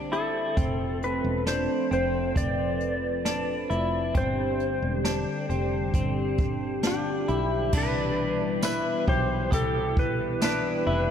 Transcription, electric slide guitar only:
0.13 0.98 A4 medium
1.04 1.48 B4 medium
1.48 1.92 C5 medium
1.93 2.37 C5 medium
2.37 4.17 D5 loud
4.17 6.81 C5 medium
6.87 7.78 G4 medium
7.77 8.64 B4 loud
8.65 9.09 B4 medium
9.09 9.50 C5 loud
9.54 9.99 A4 loud
9.99 10.43 B4 loud
10.44 11.11 B4 loud

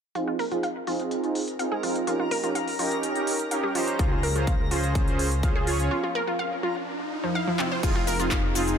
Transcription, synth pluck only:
0.15 0.22 F4 medium
0.28 0.34 F4 medium
0.39 0.43 A#4 loud
0.52 0.58 F4 medium
0.63 0.70 F5 medium
0.87 0.91 F4 medium
1.59 1.66 F5 medium
1.72 1.75 G#4 medium
1.83 1.87 F4 medium
2.07 2.14 F4 medium
2.20 2.26 F4 medium
2.31 2.35 A#4 loud
2.44 2.50 F4 medium
2.55 2.62 F5 medium
2.79 2.83 F4 medium
3.51 3.58 F5 medium
3.64 3.67 G4 medium
3.75 3.79 F4 medium
3.99 4.06 F4 medium
4.11 4.18 F4 medium
4.23 4.27 A#4 loud
4.36 4.42 F4 medium
4.47 4.54 F5 medium
4.71 4.75 F4 medium
5.43 5.50 F5 medium
5.56 5.59 G#4 loud
5.67 5.71 F4 medium
5.91 5.98 F4 medium
6.03 6.10 F4 medium
6.15 6.19 A#4 loud
6.27 6.34 F4 medium
6.39 6.46 F5 medium
6.63 6.67 F4 medium
7.24 7.33 F3 medium
7.35 7.45 F5 medium
7.47 7.51 F3 medium
7.59 7.66 C4 medium
7.72 7.78 C5 medium
7.83 7.90 F4 medium
7.96 8.02 F4 medium
8.07 8.11 A#4 loud
8.20 8.26 F4 medium
8.31 8.38 F5 medium
8.55 8.59 F4 medium

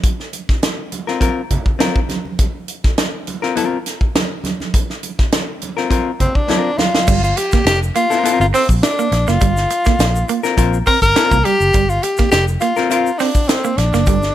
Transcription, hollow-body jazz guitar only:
1.07 1.19 C4 medium
1.07 1.20 F4 medium
1.07 1.21 A#4 medium
1.20 1.40 C4 medium
1.20 1.41 F4 medium
1.20 1.41 A#4 loud
1.79 1.99 C4 medium
1.79 2.00 F4 medium
1.79 2.00 A#4 medium
3.42 3.54 C4 medium
3.42 3.56 F4 medium
3.42 3.56 A#4 medium
3.56 3.77 C4 medium
3.56 3.77 F4 medium
3.56 3.78 A#4 medium
5.77 5.89 C4 medium
5.77 5.90 F4 medium
5.77 5.90 A#4 medium
5.90 6.10 C4 medium
5.90 6.10 F4 medium
5.90 6.11 A#4 loud
6.48 6.70 C4 medium
6.48 6.70 F4 medium
6.48 6.71 A#4 medium
8.10 8.22 C4 medium
8.10 8.24 F4 medium
8.10 8.24 A#4 medium
8.24 8.45 C4 medium
8.24 8.45 F4 loud
8.24 8.46 A#4 loud
10.43 10.56 C4 medium
10.43 10.57 F4 medium
10.43 10.57 A#4 medium
10.57 10.77 C4 medium
10.57 10.77 F4 loud
10.57 10.78 A#4 loud
11.16 11.36 C4 medium
11.16 11.37 F4 loud
11.16 11.37 A#4 loud
12.76 12.88 C4 medium
12.76 12.89 F4 medium
12.76 12.90 A#4 medium
12.90 13.10 C4 medium
12.90 13.10 F4 loud
12.90 13.11 A#4 medium

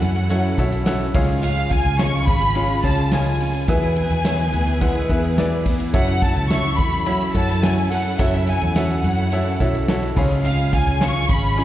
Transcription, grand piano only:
0.00 1.16 C#3 medium
0.00 0.30 E4 loud
0.00 0.30 F#4 medium
0.00 0.30 A4 medium
0.00 0.30 C#5 medium
0.00 0.59 E5 loud
0.00 0.30 F#5 medium
0.30 0.55 E4 medium
0.30 0.55 F#4 medium
0.30 0.55 A4 medium
0.30 0.55 C#5 medium
0.30 0.55 F#5 medium
0.58 0.83 E4 medium
0.58 0.83 F#4 medium
0.58 0.83 A4 medium
0.58 0.84 C#5 medium
0.58 0.84 E5 medium
0.86 1.15 E4 medium
0.86 1.15 F#4 medium
0.86 1.15 A4 medium
0.86 1.14 C#5 medium
0.86 1.15 F#5 loud
1.15 1.96 G#2 medium
1.15 1.90 C#4 loud
1.15 1.90 F4 medium
1.15 1.90 G#4 medium
1.15 1.90 C#5 medium
1.15 1.90 F5 loud
1.99 2.49 C#4 medium
1.99 2.49 F4 medium
1.99 2.50 G#4 medium
1.99 2.50 C#5 medium
1.99 2.50 G#5 medium
2.55 2.81 C#4 medium
2.55 2.81 F4 medium
2.55 2.81 G#4 medium
2.55 2.81 C#5 medium
2.55 2.81 F5 medium
2.84 3.09 C#4 medium
2.84 3.09 F4 medium
2.84 3.09 G#4 medium
2.84 3.09 C#5 medium
2.84 3.09 F5 medium
3.12 3.62 C#4 medium
3.12 3.62 F4 medium
3.12 3.62 G#4 medium
3.12 3.62 C#5 medium
3.12 3.63 G#5 medium
3.68 4.49 B2 medium
3.68 4.19 B3 medium
3.68 4.19 E4 medium
3.68 4.19 G#4 medium
3.68 4.19 B4 medium
3.68 4.19 E5 loud
4.25 4.75 B3 medium
4.25 4.75 E4 medium
4.25 4.75 G#4 medium
4.25 4.75 B4 medium
4.25 4.75 C#5 medium
4.81 5.06 B3 medium
4.81 5.06 E4 medium
4.81 5.06 G#4 medium
4.81 5.06 B4 medium
4.81 5.06 F#5 loud
5.09 5.35 B3 medium
5.09 5.35 E4 medium
5.09 5.35 G#4 medium
5.09 5.35 B4 medium
5.09 5.35 E5 medium
5.38 5.88 B3 medium
5.38 5.88 E4 medium
5.38 5.88 G#4 medium
5.38 5.88 B4 medium
5.38 5.88 D5 medium
5.93 6.74 C#3 medium
5.93 6.44 E4 medium
5.93 6.44 F#4 medium
5.93 6.44 A4 medium
5.93 6.44 C#5 medium
5.93 6.44 E5 loud
6.50 7.00 E4 medium
6.50 7.00 F#4 medium
6.50 7.01 A4 medium
6.50 7.01 C#5 medium
6.50 7.01 E5 medium
7.06 7.32 E4 medium
7.06 7.32 F#4 medium
7.06 7.32 A4 medium
7.06 7.32 C#5 medium
7.06 7.32 F#5 medium
7.34 7.60 E4 medium
7.34 7.60 F#4 medium
7.34 7.60 A4 medium
7.34 7.60 C#5 medium
7.34 7.60 F#5 medium
7.62 8.13 E4 medium
7.62 8.13 F#4 medium
7.62 8.13 A4 medium
7.62 8.13 C#5 medium
7.62 8.13 F#5 medium
8.19 9.00 C#3 medium
8.19 8.69 E4 medium
8.19 8.69 F#4 medium
8.19 8.69 A4 medium
8.19 8.70 C#5 medium
8.19 8.70 F#5 loud
8.75 9.26 E4 medium
8.75 9.26 F#4 medium
8.75 9.26 A4 medium
8.75 9.26 C#5 medium
8.75 9.26 E5 medium
9.32 9.57 E4 medium
9.32 9.57 F#4 medium
9.32 9.57 A4 medium
9.32 9.57 C#5 medium
9.32 9.57 E5 medium
9.60 9.85 E4 medium
9.60 9.85 F#4 medium
9.60 9.85 A4 medium
9.60 9.85 C#5 medium
9.60 9.86 E5 medium
9.89 10.17 E4 medium
9.89 10.17 F#4 medium
9.89 10.17 A4 medium
9.89 10.16 C#5 medium
9.89 10.17 E5 medium
9.89 10.15 F#5 medium
10.17 10.97 G#2 medium
10.17 10.92 C#4 medium
10.17 10.92 F4 medium
10.17 10.92 G#4 medium
10.17 10.92 C#5 medium
10.17 10.92 F5 loud
10.17 10.43 B5 medium
11.01 11.51 C#4 medium
11.01 11.51 F4 medium
11.01 11.51 G#4 medium
11.01 11.51 C#5 medium
11.01 11.52 F5 medium
11.57 11.64 C#4 medium
11.57 11.64 F4 medium
11.57 11.64 G#4 medium
11.57 11.64 C#5 medium
11.57 11.64 G#5 medium

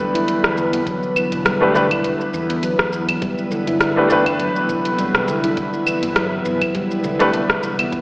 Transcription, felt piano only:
0.00 1.57 A3 medium
0.00 1.58 D4 medium
0.00 1.59 B4 medium
0.00 1.58 G5 medium
1.60 1.71 A3 medium
1.60 1.71 D4 medium
1.60 1.72 G4 medium
1.60 1.72 B4 medium
1.74 1.83 A3 medium
1.74 1.83 D4 medium
1.74 1.83 G4 medium
1.74 1.83 B4 loud
3.96 4.07 A3 medium
3.96 4.07 D4 medium
3.96 4.07 G4 medium
3.96 4.08 B4 medium
4.08 6.27 A3 medium
4.08 6.28 D4 medium
4.08 6.29 G5 medium
4.12 6.29 B4 medium
7.19 7.26 A3 medium
7.19 7.27 D4 medium
7.19 7.27 G4 medium
7.19 7.27 B4 loud

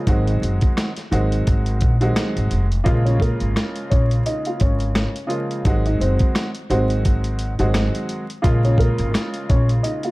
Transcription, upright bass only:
0.07 0.34 G#1 loud
0.42 0.58 F#1 loud
1.12 1.39 G#1 medium
1.47 1.82 G#1 loud
1.82 2.09 A#1 loud
2.36 2.48 G#1 medium
2.51 2.79 F1 medium
2.86 3.29 A#1 loud
3.41 3.53 G#1 medium
3.92 4.19 A#1 medium
4.61 5.04 G#1 medium
5.65 5.93 G#1 loud
6.00 6.16 F#1 loud
6.70 7.56 G#1 loud
7.60 7.87 G#1 medium
8.44 8.87 A#1 loud
8.99 9.11 G#1 loud
9.50 9.77 A#1 medium

